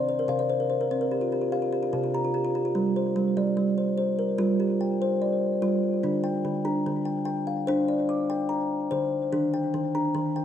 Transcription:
0.00 0.12 C3 medium
0.00 0.17 D5 medium
0.09 0.27 C5 medium
0.19 0.38 A#4 medium
0.28 1.60 C3 medium
0.28 0.48 C5 medium
0.28 0.70 F5 medium
0.39 0.58 D5 medium
0.50 0.68 C5 medium
0.60 0.79 A#4 medium
0.70 0.89 C5 medium
0.81 1.00 A#4 medium
0.91 1.32 C4 medium
0.91 1.10 C5 medium
1.01 1.20 A#4 medium
1.11 1.31 G4 medium
1.21 1.40 F4 medium
1.32 1.51 G4 medium
1.42 1.61 F4 medium
1.52 1.71 G4 medium
1.52 1.93 F5 medium
1.62 1.81 F4 medium
1.73 1.91 G4 medium
1.83 2.02 F4 medium
1.93 2.59 C3 medium
1.93 2.13 G4 medium
2.04 2.23 F4 medium
2.14 2.33 G4 medium
2.14 2.55 A#5 medium
2.24 2.43 F4 medium
2.34 2.54 G4 medium
2.45 2.64 F4 medium
2.55 2.74 G4 medium
2.65 2.84 F4 medium
2.75 3.08 G3 medium
2.96 3.57 C5 medium
3.16 3.36 G3 medium
3.37 3.56 G3 medium
3.37 3.98 D5 medium
3.57 4.23 G3 medium
3.78 3.96 C5 medium
3.98 4.39 C5 medium
4.19 4.80 A#4 medium
4.38 5.38 G3 medium
4.38 4.80 F4 medium
4.60 5.21 G4 medium
4.81 5.43 G5 medium
5.02 5.43 C5 medium
5.22 5.84 D5 medium
5.62 5.95 G3 medium
5.62 6.04 F4 medium
6.03 6.37 D3 medium
6.03 6.45 D4 medium
6.24 6.85 G5 medium
6.45 6.78 D3 medium
6.65 7.07 D4 medium
6.65 7.27 A#5 medium
6.86 7.68 D3 medium
7.05 7.24 G5 medium
7.25 7.67 G5 medium
7.47 8.09 F5 medium
7.67 8.67 D4 loud
7.67 8.09 C5 medium
7.88 8.50 D5 medium
8.09 8.71 D6 medium
8.30 8.71 G5 medium
8.49 9.12 A#5 medium
8.91 9.25 D3 medium
8.91 9.32 C5 medium
9.32 9.66 D#3 medium
9.32 9.74 D4 medium
9.54 10.15 G5 medium
9.74 10.07 D#3 medium
9.95 10.36 D4 medium
9.95 10.45 A#5 medium
10.15 10.45 D#3 medium
10.36 10.45 G5 medium

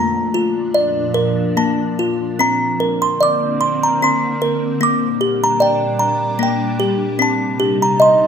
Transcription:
0.00 2.37 A#2 medium
0.00 2.37 F3 medium
0.00 1.56 A#3 medium
0.00 2.37 D4 medium
0.00 1.95 A#5 medium
0.34 1.98 F4 medium
0.74 2.40 D5 medium
1.14 2.40 A#4 medium
1.57 2.40 A#3 medium
1.57 2.43 A5 medium
1.99 2.41 F4 medium
2.39 4.79 D3 medium
2.39 4.80 A#3 medium
2.39 4.01 C4 medium
2.39 4.80 C4 medium
2.39 2.98 A#5 medium
2.80 4.41 A#4 medium
3.02 3.23 C6 medium
3.21 4.81 D5 medium
3.21 3.85 D6 medium
3.61 4.03 C6 medium
3.83 4.04 A#5 medium
4.02 4.82 C4 medium
4.02 4.85 C6 medium
4.42 4.82 A#4 medium
4.81 7.18 A#2 medium
4.81 8.27 G3 medium
4.81 6.38 A#3 medium
4.81 7.18 D4 medium
4.81 5.38 D6 medium
5.21 6.78 G4 medium
5.44 5.61 A#5 medium
5.60 7.20 D5 medium
5.60 6.37 G5 medium
5.99 7.20 A#5 medium
6.39 7.20 A#3 medium
6.39 6.98 G5 medium
6.80 7.20 G4 medium
7.19 8.27 C3 medium
7.19 8.27 C4 medium
7.19 8.27 D#4 medium
7.19 7.77 A5 medium
7.60 8.27 G4 medium
7.82 8.02 A#5 medium
8.00 8.27 D#5 medium
8.00 8.27 C6 medium

